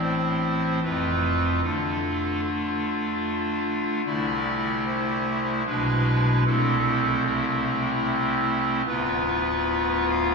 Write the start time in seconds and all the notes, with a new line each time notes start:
Already playing: A1 A2 A3 C4 E4
0.02 C5
0.83 F1 F2 A3 C4 F4 B4
1.62 D3 A3 D4 F4 A4
2.43 F4
4.05 C2 C3 A3 E4 D5
4.85 C5
5.66 B1 B2 G#3 D4 E4 B4
6.45 C2 C3 A3 C4 E4 A4
7.24 E4
8.86 D1 D2 B3 F4 B4
10.10 F5